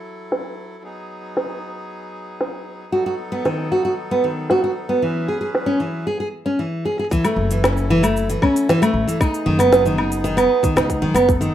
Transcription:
0.00 2.89 F#3 medium
0.00 0.83 E4 medium
0.00 0.83 A4 medium
0.32 snare medium
0.84 4.98 B3 medium
0.84 4.98 D#4 medium
0.84 2.91 G#4 medium
1.37 snare medium
2.41 snare medium
2.92 6.03 F#3 medium
2.92 3.05 F#4 medium
2.92 5.00 A4 medium
3.06 3.14 F#4 medium
3.32 3.45 B3 medium
3.45 3.70 D#3 medium
3.45 snare medium
3.72 3.84 F#4 medium
3.85 3.92 F#4 medium
4.11 4.24 B3 medium
4.24 4.49 D#3 medium
4.50 4.62 F#4 medium
4.50 snare medium
4.64 4.71 F#4 medium
4.89 5.02 B3 medium
5.02 5.27 E3 medium
5.02 6.06 C#4 medium
5.02 6.06 G#4 medium
5.02 6.06 B4 medium
5.28 5.40 G#4 medium
5.41 5.49 G#4 medium
5.55 snare medium
5.66 5.79 C#4 medium
5.80 6.05 E3 medium
6.07 6.18 G#4 medium
6.20 6.27 G#4 medium
6.46 6.58 C#4 medium
6.59 6.84 E3 medium
6.85 6.97 G#4 medium
6.85 closed hi-hat soft
6.92 closed hi-hat soft
6.98 7.06 G#4 medium
6.98 closed hi-hat medium
7.04 closed hi-hat medium
7.11 7.23 E3 medium
7.11 9.18 F#3 medium
7.11 9.18 E4 medium
7.11 9.18 A4 medium
7.11 kick loud
7.11 shaker medium
7.25 7.49 A3 loud
7.25 open hi-hat soft
7.25 low woodblock medium
7.25 shaker soft
7.36 8.35 F#1 loud
7.51 7.62 E3 medium
7.51 open hi-hat medium
7.51 shaker medium
7.64 7.88 C#4 medium
7.64 snare loud
7.64 low woodblock medium
7.64 shaker medium
7.77 shaker soft
7.90 8.02 E3 loud
8.03 8.27 A3 medium
8.03 open hi-hat medium
8.03 low woodblock medium
8.03 shaker medium
8.17 shaker medium
8.30 8.41 E3 medium
8.30 open hi-hat soft
8.30 shaker soft
8.42 8.67 C#4 medium
8.42 kick loud
8.42 low woodblock medium
8.56 open hi-hat medium
8.56 shaker medium
8.69 8.80 E3 loud
8.69 snare medium
8.69 shaker medium
8.82 9.06 A3 loud
8.82 open hi-hat soft
8.82 low woodblock medium
8.82 shaker soft
8.94 9.03 A1 loud
9.08 9.19 E3 medium
9.08 open hi-hat medium
9.08 shaker medium
9.20 11.54 B3 medium
9.20 11.54 D#4 medium
9.20 9.45 D#4 medium
9.20 11.27 G#4 medium
9.20 kick loud
9.20 low woodblock medium
9.20 shaker medium
9.34 open hi-hat soft
9.34 shaker soft
9.46 10.44 F#1 loud
9.46 9.58 D#3 medium
9.59 9.84 B3 loud
9.59 open hi-hat medium
9.59 low woodblock medium
9.59 shaker medium
9.73 snare loud
9.73 shaker medium
9.86 9.97 D#3 medium
9.86 shaker soft
9.98 10.23 D#4 medium
9.98 low woodblock medium
10.12 open hi-hat medium
10.12 shaker medium
10.24 10.36 D#3 loud
10.24 shaker medium
10.37 10.62 B3 loud
10.37 open hi-hat soft
10.37 low woodblock medium
10.37 shaker soft
10.63 10.75 D#3 medium
10.63 kick loud
10.63 open hi-hat medium
10.63 shaker medium
10.76 11.03 C#2 medium
10.76 11.01 D#4 medium
10.76 snare loud
10.76 low woodblock medium
10.76 shaker medium
10.90 kick medium
10.90 open hi-hat soft
10.90 shaker soft
11.02 11.11 F#2 medium
11.02 11.14 D#3 loud
11.14 11.48 F#1 medium
11.14 11.28 B3 loud
11.14 open hi-hat medium
11.14 low woodblock medium
11.14 shaker medium
11.29 11.54 A4 medium
11.29 kick loud
11.29 shaker medium
11.41 11.53 D#3 medium
11.41 open hi-hat soft
11.41 shaker soft

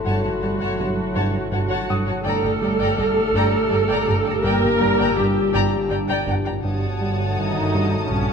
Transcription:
0.00 2.22 G1 medium
0.00 2.08 A3 medium
0.00 2.08 A4 medium
0.00 2.25 A4 soft
0.00 2.25 C#5 soft
0.00 1.85 A5 soft
0.00 2.21 A5 medium
0.00 1.85 B5 soft
0.00 1.85 C6 soft
0.05 0.14 G1 medium
0.05 0.28 G2 medium
0.05 1.50 F#3 medium
0.05 1.49 F#4 medium
0.05 0.22 C#5 medium
0.05 0.22 F#5 soft
0.05 0.23 A5 medium
0.23 0.32 G1 soft
0.23 0.30 C#5 soft
0.23 0.30 F#5 soft
0.23 0.31 A5 soft
0.41 0.50 G1 soft
0.41 0.65 G3 medium
0.41 0.49 C#5 soft
0.41 0.49 F#5 soft
0.41 0.49 A5 soft
0.59 0.68 G1 medium
0.59 0.77 C#5 medium
0.59 0.77 F#5 medium
0.59 0.77 A5 medium
0.78 0.86 G1 soft
0.78 1.01 G2 medium
0.78 0.86 C#5 soft
0.78 0.85 F#5 soft
0.78 0.87 A5 soft
1.15 1.23 G1 medium
1.15 1.38 G2 medium
1.15 1.32 C#5 medium
1.15 1.32 F#5 medium
1.15 1.33 A5 medium
1.52 1.59 G1 soft
1.52 1.74 G2 medium
1.52 2.24 F#3 medium
1.52 2.24 F#4 medium
1.52 1.59 C#5 medium
1.52 1.59 F#5 medium
1.52 1.61 A5 medium
1.69 1.78 G1 medium
1.69 1.87 C#5 medium
1.69 1.87 F#5 medium
1.69 1.88 A5 medium
1.88 1.97 G1 soft
1.88 2.11 G2 medium
1.88 1.95 C#5 medium
1.88 1.95 F#5 soft
1.88 4.05 F#5 soft
1.88 1.97 A5 medium
1.88 4.05 D#6 medium
2.06 2.15 G1 soft
2.06 2.14 C#5 medium
2.06 2.13 F#5 medium
2.06 2.15 A5 medium
2.24 6.60 G1 medium
2.24 2.33 G1 medium
2.24 2.48 G2 medium
2.24 6.60 A#2 medium
2.24 4.45 A3 medium
2.24 6.65 D4 medium
2.24 6.60 G4 medium
2.24 6.65 G4 medium
2.24 4.41 A4 medium
2.24 2.41 D5 medium
2.24 2.42 G5 medium
2.24 6.65 A5 medium
2.24 2.43 A#5 medium
2.24 6.24 D6 medium
2.24 4.78 F6 medium
2.43 2.51 G1 medium
2.43 2.50 D5 soft
2.43 2.50 G5 soft
2.43 2.51 A#5 soft
2.61 2.69 G1 soft
2.61 2.84 G3 medium
2.61 2.68 D5 medium
2.61 2.68 G5 soft
2.61 2.70 A#5 soft
2.79 2.87 G1 medium
2.79 2.97 D5 medium
2.79 2.96 G5 medium
2.79 2.98 A#5 medium
2.98 3.06 G1 soft
2.98 3.20 G2 medium
2.98 3.05 D5 medium
2.98 3.05 G5 medium
2.98 3.07 A#5 medium
2.98 6.24 E6 soft
3.34 3.42 G1 medium
3.34 3.57 G2 medium
3.34 3.52 D5 medium
3.34 3.52 G5 medium
3.34 3.53 A#5 medium
3.70 3.79 G1 medium
3.70 3.93 G2 medium
3.70 3.78 D5 medium
3.70 3.78 G5 medium
3.70 3.80 A#5 medium
3.88 3.97 G1 medium
3.88 4.05 D5 medium
3.88 4.05 G5 medium
3.88 4.08 A#5 medium
4.06 4.15 G1 medium
4.06 4.30 G2 medium
4.06 4.14 D5 medium
4.06 4.14 G5 medium
4.06 4.17 A#5 medium
4.24 4.34 G1 medium
4.24 4.32 D5 medium
4.24 4.32 G5 medium
4.29 4.36 A#5 medium
4.44 4.52 G1 medium
4.44 4.66 G2 medium
4.44 5.18 A#3 medium
4.44 5.18 A#4 loud
4.44 4.61 D5 medium
4.44 4.61 G5 medium
4.44 4.63 A#5 medium
4.62 4.70 G1 medium
4.62 4.69 D5 soft
4.62 4.69 G5 soft
4.62 4.72 A#5 medium
4.79 4.89 G1 medium
4.79 5.03 G3 medium
4.79 4.87 D5 medium
4.79 4.87 G5 medium
4.79 4.89 A#5 medium
4.98 5.06 G1 medium
4.98 5.15 D5 medium
4.98 5.15 G5 medium
4.98 5.17 A#5 medium
5.16 5.25 G1 medium
5.16 5.40 G2 medium
5.16 5.90 G3 medium
5.16 5.91 G4 medium
5.16 5.24 D5 medium
5.16 5.24 G5 soft
5.16 5.25 A#5 medium
5.53 5.62 G1 medium
5.53 5.77 G2 medium
5.53 5.71 D5 medium
5.53 5.71 G5 medium
5.53 5.72 A#5 medium
5.90 5.98 G1 medium
5.90 6.13 G2 medium
5.90 5.97 D5 medium
5.90 5.98 G5 medium
5.90 5.99 A#5 medium
6.09 6.17 G1 medium
6.09 6.25 D5 medium
6.09 6.26 G5 medium
6.09 6.26 A#5 medium
6.27 6.35 G1 medium
6.27 6.49 G2 medium
6.27 6.34 D5 medium
6.27 6.34 G5 medium
6.27 6.34 A#5 medium
6.45 6.53 G1 medium
6.45 6.52 D5 soft
6.45 6.53 G5 medium
6.45 6.53 A#5 medium
6.63 8.07 G1 medium
6.63 8.33 G1 medium
6.63 6.86 G2 medium
6.63 8.33 A3 medium
6.63 8.33 F#4 medium
6.63 8.33 A4 medium
6.63 8.06 C#5 medium
6.63 8.33 C#5 medium
6.63 8.06 F#5 medium
6.63 8.33 F#5 medium
6.63 8.06 A5 medium
6.63 8.33 D#6 medium
6.67 8.33 A5 medium
7.01 7.23 G3 medium
7.38 7.60 G2 medium
7.38 8.07 D#3 medium
7.38 8.07 D#4 medium
7.75 7.96 G2 medium
8.09 8.33 A#1 soft
8.09 8.33 G2 medium
8.09 8.33 C#3 medium
8.09 8.33 C#4 medium
8.09 8.33 C#5 medium
8.09 8.33 F#5 medium
8.09 8.33 A5 soft

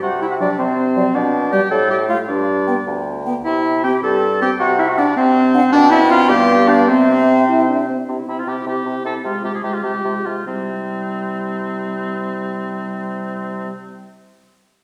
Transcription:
0.03 0.50 C3 medium
0.03 0.21 F#4 medium
0.03 0.21 F#5 medium
0.22 0.26 E4 medium
0.22 0.30 E5 medium
0.31 0.40 F#4 medium
0.31 0.35 F#5 medium
0.40 0.47 F#3 medium
0.40 0.60 D4 medium
0.40 0.49 D5 medium
0.40 0.50 D5 medium
0.59 1.06 C3 medium
0.59 1.16 C4 medium
0.59 1.16 C5 medium
0.96 1.03 F#3 medium
0.96 1.05 D5 medium
1.14 1.62 B2 medium
1.14 1.52 D4 medium
1.14 1.53 D5 medium
1.52 1.59 G3 medium
1.52 1.70 G4 medium
1.52 1.61 D5 medium
1.52 1.72 G5 medium
1.71 2.19 A2 medium
1.71 1.90 A4 medium
1.71 1.90 A5 medium
1.90 1.99 G4 medium
1.90 1.99 G5 medium
2.09 2.16 A3 medium
2.09 2.18 F4 medium
2.09 2.18 F5 medium
2.28 2.77 G2 medium
2.28 2.86 D4 medium
2.28 2.86 D5 medium
2.67 2.74 B3 medium
2.67 2.76 G5 medium
2.87 3.36 D2 medium
3.26 3.33 B3 medium
3.26 3.35 G5 medium
3.45 3.94 C3 medium
3.45 3.86 E4 medium
3.45 3.82 E5 medium
3.84 3.91 C4 medium
3.84 4.03 G4 medium
3.84 3.93 G5 medium
4.03 4.51 G2 medium
4.03 4.41 A4 medium
4.03 4.41 A5 medium
4.41 4.48 C4 medium
4.41 4.50 G4 medium
4.41 4.50 G5 medium
4.41 4.59 G5 medium
4.60 5.08 C3 medium
4.60 4.78 F#4 medium
4.60 4.81 F#5 medium
4.79 4.90 E4 medium
4.79 4.90 E5 medium
4.88 4.97 F#4 medium
4.88 4.99 F#5 medium
4.98 5.16 D4 medium
4.98 5.05 D4 medium
4.98 5.17 D5 medium
4.98 5.07 F#5 medium
5.16 5.59 C3 medium
5.16 5.72 C4 loud
5.16 5.75 C5 medium
5.54 5.61 D4 medium
5.54 5.63 F#5 medium
5.72 6.32 B2 medium
5.72 5.92 D4 loud
5.72 6.03 D4 medium
5.72 5.92 D5 medium
5.72 6.31 G5 medium
5.91 6.12 E4 loud
5.91 6.01 E5 loud
6.01 6.31 C4 medium
6.10 6.30 F4 loud
6.10 6.20 F5 loud
6.29 6.90 G2 medium
6.29 6.90 B3 medium
6.29 6.69 G4 loud
6.29 6.89 F5 medium
6.29 6.71 G5 medium
6.68 6.89 D4 loud
6.68 6.90 D5 medium
6.88 7.89 C3 medium
6.88 7.88 C4 medium
6.88 7.45 C4 medium
6.88 7.89 C5 medium
6.88 7.87 E5 medium
7.49 7.67 E4 medium
7.69 7.89 D4 medium
7.89 7.98 C4 medium
8.08 8.17 C3 soft
8.08 8.27 C4 soft
8.08 8.27 E4 soft
8.28 8.36 C3 soft
8.28 8.47 C4 soft
8.28 8.46 E4 soft
8.28 8.40 E4 soft
8.39 8.50 F4 soft
8.47 8.56 C3 soft
8.47 8.66 C4 soft
8.47 8.66 E4 soft
8.47 8.67 G4 medium
8.66 8.75 C3 soft
8.66 8.86 C4 soft
8.66 8.85 E4 soft
8.66 9.04 G4 medium
8.85 8.94 C3 soft
8.85 9.05 C4 soft
8.85 9.04 E4 soft
9.05 9.13 C3 soft
9.05 9.24 C4 soft
9.05 9.23 E4 soft
9.05 9.14 A4 medium
9.24 9.33 C3 soft
9.24 9.44 G#3 soft
9.24 9.43 F4 soft
9.24 9.44 F4 medium
9.44 9.53 C3 soft
9.44 9.63 G#3 soft
9.44 9.63 F4 soft
9.44 9.54 G4 medium
9.54 9.63 G#4 medium
9.63 9.73 C3 soft
9.63 9.83 G#3 soft
9.63 9.83 F4 soft
9.63 9.75 G4 medium
9.73 9.83 F4 soft
9.83 9.93 C3 soft
9.83 10.04 G#3 soft
9.83 10.04 F4 soft
9.83 10.27 G4 medium
10.04 10.14 C3 soft
10.04 10.26 G#3 soft
10.04 10.25 F4 soft
10.25 10.35 C3 soft
10.25 10.47 G#3 soft
10.25 10.46 F4 soft
10.46 13.70 C3 soft
10.46 13.71 G3 soft
10.46 13.70 C4 soft
10.46 13.70 E4 soft

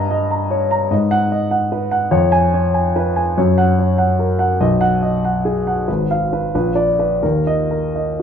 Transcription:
0.00 0.88 G2 medium
0.00 0.10 D#5 medium
0.00 0.21 A#5 medium
0.10 0.43 D#5 soft
0.31 0.63 A#5 soft
0.51 0.83 C#5 soft
0.71 0.91 A#5 soft
0.91 2.09 G#2 soft
0.91 1.23 D#5 soft
1.11 1.43 F#5 medium
1.32 1.64 D#5 soft
1.51 1.84 F#5 soft
1.72 2.04 B4 soft
1.91 2.12 F#5 medium
2.11 3.33 F2 medium
2.11 2.45 C#5 soft
2.32 2.66 G#5 medium
2.54 2.87 C#5 soft
2.74 3.08 G#5 soft
2.96 3.29 B4 soft
3.16 3.37 G#5 soft
3.38 4.56 F#2 medium
3.38 3.70 C#5 soft
3.58 3.90 F#5 medium
3.79 4.11 C#5 soft
3.98 4.31 F#5 soft
4.19 4.51 A#4 soft
4.39 4.59 F#5 soft
4.61 5.85 B1 medium
4.61 4.94 D#5 soft
4.81 5.15 F#5 medium
5.02 5.37 D#5 soft
5.25 5.58 F#5 soft
5.45 5.79 G#4 soft
5.67 5.88 F#5 soft
5.88 6.51 G#1 soft
5.88 6.22 B4 soft
6.11 6.45 F5 soft
6.33 6.54 B4 soft
6.55 7.22 A#1 soft
6.55 6.91 B4 soft
6.75 7.13 D5 soft
6.99 7.23 B4 soft
7.23 8.22 D#2 soft
7.23 7.62 A#4 soft
7.47 7.86 D#5 medium
7.71 8.10 A#4 soft
7.96 8.22 D#5 soft

